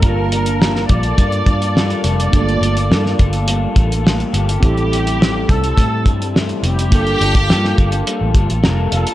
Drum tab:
HH |x-xx--xxxxxx-xxx|xxxx--xxx-xx-xxx|xxxx--xxx-xx-xxx|xxxx--xxx-xx--xx|
SD |----oo------o---|----oo------o---|----o-------o---|----oo------o---|
BD |o-----o-o-o-----|o-----o---o-----|o-----o-o-o-----|o--o--o---o-----|